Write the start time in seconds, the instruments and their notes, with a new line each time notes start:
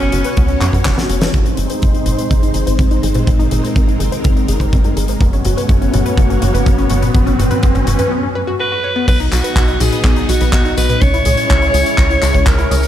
Already playing: string machine B3 C#4 F#4 C#5, alto saxophone C#4
0.01 synth arpeggio sound C#4
0.12 analog synth bass F#1, synth arpeggio sound F#4, closed hi-hat
0.24 synth arpeggio sound B4, closed hi-hat
0.37 analog synth bass C#2, synth arpeggio sound B3, kick, closed hi-hat
0.48 synth arpeggio sound C#4, closed hi-hat
0.61 analog synth bass F#2, synth arpeggio sound F#4, clap, closed hi-hat
0.73 analog synth bass F#2, synth arpeggio sound B3, kick, closed hi-hat
0.85 analog synth bass F#1, synth arpeggio sound C#5, kick, snare, clap, closed hi-hat
0.97 synth arpeggio sound B3, snare, closed hi-hat
1.09 analog synth bass F#1, synth arpeggio sound F#4, closed hi-hat
1.21 synth arpeggio sound B4, snare, closed hi-hat
1.34 analog synth bass G#1, string machine G#3 C4 D#4 C5, synth arpeggio sound C4, kick, closed hi-hat, mid tom, riser
1.46 synth arpeggio sound D#4, closed hi-hat
1.57 analog synth bass G#1, synth arpeggio sound G#4, closed hi-hat
1.70 synth arpeggio sound C5, closed hi-hat
1.82 analog synth bass G#1, synth arpeggio sound C4, kick, closed hi-hat, mid tom
1.94 synth arpeggio sound D#4, closed hi-hat
2.06 analog synth bass G#1, synth arpeggio sound G#4, closed hi-hat, high tom
2.18 synth arpeggio sound C5, closed hi-hat
2.31 analog synth bass G#1, synth arpeggio sound C4, kick, closed hi-hat, mid tom
2.43 synth arpeggio sound D#4, closed hi-hat
2.54 analog synth bass G#1, synth arpeggio sound G#4, closed hi-hat
2.67 analog synth bass G#1, synth arpeggio sound C5, closed hi-hat
2.79 analog synth bass G#1, synth arpeggio sound C4, kick, closed hi-hat, mid tom
2.91 synth arpeggio sound D#4, closed hi-hat
3.03 analog synth bass G#1, synth arpeggio sound G#4, closed hi-hat
3.14 synth arpeggio sound C5, closed hi-hat, high tom
3.27 analog synth bass G#1, synth arpeggio sound C4, string machine A#4, kick, closed hi-hat, mid tom
3.39 synth arpeggio sound D#4, closed hi-hat
3.51 analog synth bass G#1, synth arpeggio sound G#4, closed hi-hat, high tom
3.64 synth arpeggio sound C5, closed hi-hat
3.76 analog synth bass G#1, synth arpeggio sound C4, kick, closed hi-hat, mid tom
3.88 synth arpeggio sound D#4, closed hi-hat
4.00 analog synth bass G#1, synth arpeggio sound G#4, closed hi-hat
4.12 synth arpeggio sound C5, closed hi-hat
4.24 analog synth bass G#1, synth arpeggio sound C4, kick, closed hi-hat, mid tom
4.36 synth arpeggio sound D#4, closed hi-hat
4.48 analog synth bass G#1, synth arpeggio sound G#4, closed hi-hat
4.60 analog synth bass G#1, synth arpeggio sound C5, kick, closed hi-hat
4.73 analog synth bass G#1, synth arpeggio sound C4, kick, closed hi-hat, mid tom
4.84 synth arpeggio sound D#4, closed hi-hat
4.97 analog synth bass G#1, synth arpeggio sound G#4, closed hi-hat
5.08 synth arpeggio sound C5, closed hi-hat
5.21 analog synth bass F#1, synth arpeggio sound B3, string machine B3 C#4 F#4 C#5, kick, closed hi-hat, mid tom
5.33 synth arpeggio sound C#4, closed hi-hat
5.45 analog synth bass F#1, synth arpeggio sound F#4, closed hi-hat, mid tom
5.57 synth arpeggio sound B4, closed hi-hat
5.69 analog synth bass F#1, synth arpeggio sound B3, kick, closed hi-hat, mid tom
5.82 synth arpeggio sound C#4, closed hi-hat
5.94 analog synth bass F#1, synth arpeggio sound F#4, closed hi-hat, mid tom, high tom
6.06 synth arpeggio sound B4, closed hi-hat
6.17 analog synth bass F#1, synth arpeggio sound B3, kick, closed hi-hat, mid tom
6.30 synth arpeggio sound C#4, closed hi-hat
6.42 analog synth bass F#1, synth arpeggio sound F#4, closed hi-hat, mid tom
6.54 analog synth bass F#1, synth arpeggio sound B4, closed hi-hat
6.66 analog synth bass F#1, synth arpeggio sound B3, kick, closed hi-hat, mid tom
6.78 synth arpeggio sound C#4, closed hi-hat
6.90 analog synth bass F#1, synth arpeggio sound F#4, closed hi-hat, mid tom
7.02 synth arpeggio sound B4, closed hi-hat, high tom
7.14 analog synth bass F#1, synth arpeggio sound B3, string machine B4, kick, closed hi-hat, mid tom
7.26 synth arpeggio sound C#4, closed hi-hat, mid tom
7.39 analog synth bass F#1, synth arpeggio sound F#4, closed hi-hat, mid tom, high tom
7.51 synth arpeggio sound B4, closed hi-hat, mid tom
7.63 analog synth bass F#1, synth arpeggio sound B3, kick, closed hi-hat, mid tom
7.75 synth arpeggio sound C#4, closed hi-hat, mid tom
7.87 analog synth bass F#1, synth arpeggio sound F#4, closed hi-hat, mid tom
7.99 synth arpeggio sound B4, closed hi-hat, mid tom
8.11 synth arpeggio sound B3
8.23 synth arpeggio sound C#4
8.35 synth arpeggio sound B4
8.47 synth arpeggio sound F#4
8.60 synth arpeggio sound F#4, alto saxophone B4
8.72 synth arpeggio sound F#4
8.84 synth arpeggio sound C#5
8.96 synth arpeggio sound B3
9.08 analog synth bass B1, string machine B3 D#4 F#4 D#5, alto saxophone B4, kick, closed hi-hat, crash, tambourine
9.20 synth arpeggio sound D#4, closed hi-hat, tambourine
9.32 analog synth bass B1, synth arpeggio sound F#4, alto saxophone F#4, clap, closed hi-hat, tambourine
9.44 synth arpeggio sound B4, closed hi-hat, tambourine
9.56 analog synth bass B1, synth arpeggio sound B3, kick, clap, closed hi-hat, tambourine
9.68 synth arpeggio sound D#4, closed hi-hat, tambourine
9.80 analog synth bass B1, synth arpeggio sound F#4, alto saxophone G#4, closed hi-hat, high tom, tambourine
9.92 synth arpeggio sound B4, closed hi-hat, tambourine
10.04 analog synth bass B1, synth arpeggio sound B3, kick, clap, closed hi-hat, tambourine
10.16 synth arpeggio sound D#4, closed hi-hat, tambourine
10.29 analog synth bass B1, synth arpeggio sound F#4, alto saxophone F#4, closed hi-hat, tambourine
10.41 analog synth bass B1, synth arpeggio sound B4, closed hi-hat, tambourine
10.53 analog synth bass B1, synth arpeggio sound B3, alto saxophone F#4, kick, clap, closed hi-hat, tambourine
10.65 synth arpeggio sound D#4, closed hi-hat, tambourine
10.77 analog synth bass B1, synth arpeggio sound F#4, alto saxophone B4, closed hi-hat, tambourine
10.89 synth arpeggio sound B4, closed hi-hat, high tom, tambourine
11.01 analog synth bass C#2, string machine G#3 C#4 E4 C#5, synth arpeggio sound C#4, alto saxophone C#5, kick, closed hi-hat, tambourine
11.14 synth arpeggio sound E4, closed hi-hat, tambourine
11.25 analog synth bass C#2, synth arpeggio sound G#4, closed hi-hat, high tom, tambourine
11.37 synth arpeggio sound C#5, closed hi-hat, tambourine
11.50 analog synth bass C#2, synth arpeggio sound C#4, kick, clap, closed hi-hat, tambourine
11.61 synth arpeggio sound E4, closed hi-hat, tambourine
11.74 analog synth bass C#2, synth arpeggio sound G#4, closed hi-hat, tambourine
11.86 synth arpeggio sound C#5, closed hi-hat, tambourine
11.98 analog synth bass C#2, synth arpeggio sound C#4, kick, clap, closed hi-hat, tambourine
12.10 synth arpeggio sound E4, closed hi-hat, tambourine
12.22 analog synth bass C#2, synth arpeggio sound G#4, clap, closed hi-hat, tambourine
12.34 analog synth bass C#2, synth arpeggio sound C#5, kick, closed hi-hat
12.46 analog synth bass C#2, synth arpeggio sound C#4, alto saxophone A#4, kick, clap, closed hi-hat, tambourine
12.59 synth arpeggio sound E4, closed hi-hat, tambourine
12.71 analog synth bass C#2, synth arpeggio sound G#4, closed hi-hat, tambourine
12.83 synth arpeggio sound C#5, closed hi-hat, tambourine